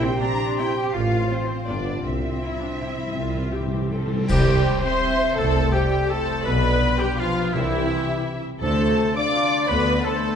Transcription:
Already playing: A#1 A#2 G3 C4 E4 G4 C5 E5 G5
0.03 C4 G4
0.12 C5
0.21 C4 D4 G4 C5 A#5
0.31 G5
0.40 C6
0.49 G5
0.58 C4 E4 G4 C5 G5
0.68 G4
0.77 C4 G4
0.86 A#3
0.94 A1 A2 F4 F5
1.03 C4
1.12 F4
1.21 C5
1.30 C4 F4 C5 F5
1.39 F5
1.49 C4 C6
1.59 F5
1.67 G1 G2 B3 D4 F4 D5 G5
1.77 B3
1.86 F4
1.96 G4
2.03 C2 C3 C4 E5
2.12 C3 C4
2.23 E4
2.27 C3
2.33 C3 G4
2.41 E4 C5 G5
2.50 C3
2.59 C3 D4 G5
2.67 C3
2.72 C3 E5
2.80 C3 E4 C5 G5
2.90 C3 G4
2.98 C3 E4
3.06 C3 G3
3.13 C2 C3 F4
3.17 C2 C3
3.26 C3 C4
3.35 C3 E4
3.42 C3 G4
3.51 C3 G4 C5 G5
3.59 C3
3.63 C3 E5
3.73 C3 G5
3.82 C3 E5
3.90 C3 A4 C5 G5
3.98 C3
4.02 C3 G4
4.11 C3 E4
4.20 C3 G3
4.28 C2 C3 G3 G4 C5 G5, concert bass drum, crash
4.48 C4
4.66 E4
4.81 C4 G4 C5 E5 C6
5.03 E4
5.21 G3
5.36 C2 C3 A3 A4 C5 A5
5.56 C4
5.72 G3 E4 G4 C5 G5
5.93 G4
6.09 A3 E4 A4 C5 A5
6.30 G3
6.44 B1 B2 B3 B4 D5 B5
6.64 D4
6.82 F4
6.99 G3 G4 B4 G5
7.18 F3 F4 B4 F5
7.53 C2 C3 E3 E4 G4 E5
7.70 C4
8.08 G4
8.26 E4
8.44 G3
8.59 D2 D3 A3 A4 C5 A5
8.78 D4
8.97 F4
9.16 D4 A4 D5 F5 D6
9.34 F4
9.52 A3
9.68 D2 D3 B3 B4 D5 B5
9.86 D4
9.97 B5
10.04 A3 F4 A4 C5 A5
10.23 A4

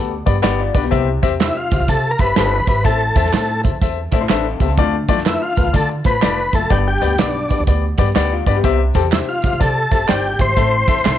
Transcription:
Already playing: D2 B3 G4 A4
0.26 G2 B3 G4 D5, kick, closed hi-hat, tambourine
0.42 G1 B3 G4 D5, snare, clap, closed hi-hat, tambourine
0.59 F4 D5
0.75 B1 B3 D4 G4 B4 D5, kick, closed hi-hat, tambourine
0.83 B3 G4
0.91 C2 C3 C4 G4 E5, kick, closed hi-hat
1.23 E2 C4 G4 E5, kick, closed hi-hat, tambourine
1.40 C4 E4 G4 E5, snare, clap, closed hi-hat, tambourine
1.57 F4
1.71 C2 C4 G4 E5, kick, closed hi-hat, tambourine
1.80 C2
1.88 C3 C4 G4 A4 E5, kick, closed hi-hat, tambourine
2.11 A#4
2.19 G1 C4 G4 B4 E5, kick, closed hi-hat, tambourine
2.36 G1 C4 G4 A4, snare, clap, closed hi-hat, tambourine
2.67 G#1 C4 G4 B4 E5, kick, closed hi-hat, tambourine
2.84 A1 A2 C4 A4 E5, kick, closed hi-hat, tambourine
3.16 E2 C4 A4 E5, kick, closed hi-hat, tambourine
3.25 snare
3.33 A2 C4 A4 E5, snare, clap, closed hi-hat, tambourine
3.64 E2 C4 A4 E5, kick, closed hi-hat, tambourine
3.81 E2 C4 A4 E5, kick, closed hi-hat, tambourine
4.12 A2 C4 A4 D5 E5, kick, snare, closed hi-hat
4.21 E4 C5
4.29 A1 C4 D4 A4 B4 E5, snare, clap, closed hi-hat, tambourine
4.45 C4 A4
4.60 C#2 B3 C4 G4 A4 E5, kick, closed hi-hat, tambourine
4.69 C4 A4
4.77 D2 D3 A3 F4 D5, kick, closed hi-hat
5.08 F2 A3 F4 D5, kick, closed hi-hat, tambourine
5.18 snare
5.25 A3 E4 F4 B4, snare, clap, closed hi-hat, tambourine
5.42 F4
5.56 D2 A3 F4 B4, kick, closed hi-hat, tambourine
5.66 D2
5.73 D3 A3 F4 A4 D5, kick, closed hi-hat, tambourine
6.04 A1 A3 F4 B4 C5, kick, snare, closed hi-hat
6.22 F1 A3 F4 D5, snare, clap, closed hi-hat, tambourine
6.53 F#1 A3 F4 A4 E5, kick, closed hi-hat, tambourine
6.70 G1 G2 B3 G4 D5, kick, closed hi-hat
6.88 G4
7.01 D2 B3 G4 D5, closed hi-hat, tambourine
7.18 B1 B3 D4 G4 D5, snare, clap, closed hi-hat, tambourine
7.49 B3 G4 D5, kick, closed hi-hat, tambourine
7.60 D2
7.67 D2 B3 G4 D5, kick, closed hi-hat, tambourine
7.98 G2 B3 G4 D5, kick, snare, closed hi-hat, tambourine
8.15 D2 B3 G4 D5, snare, clap, closed hi-hat, tambourine
8.32 F4 D5
8.46 G2 B3 D4 G4 B4 D5, kick, closed hi-hat, tambourine
8.56 B3 G4
8.64 C2 C3 C4 G4 E5, kick, closed hi-hat
8.94 E2 C4 G4 A4, kick, closed hi-hat, tambourine
9.12 C4 E4 G4 E5, snare, clap, closed hi-hat, tambourine
9.29 F4
9.42 C2 C4 G4 E5, kick, closed hi-hat, tambourine
9.53 C2
9.60 C3 C4 G4 A4 D5, kick, closed hi-hat, tambourine
9.91 G1 C4 G4 E5, kick, closed hi-hat, tambourine
10.08 G1 C4 G4 D5, snare, clap, closed hi-hat, tambourine
10.39 G#1 C4 G4 C5 E5, kick, closed hi-hat, tambourine
10.56 A1 A2 C4 A4 E5, kick, closed hi-hat, tambourine
10.88 E2 C4 A4 E5, kick, closed hi-hat, tambourine
11.05 C2 C4 A4 E5, snare, clap, closed hi-hat, tambourine

